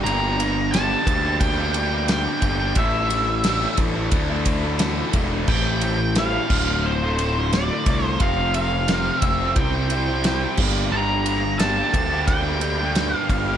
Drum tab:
CC |--------|--------|x--x----|-------x|
RD |xxxxxxxx|xxxxxxxx|-xx--xxx|xxxxxxx-|
SD |--o---o-|--o---o-|--o---o-|--o---o-|
BD |---oo--o|o--ooo-o|o--o---o|o--oo--o|

CC |--------|
RD |-xxxxxxx|
SD |--o---o-|
BD |---oo--o|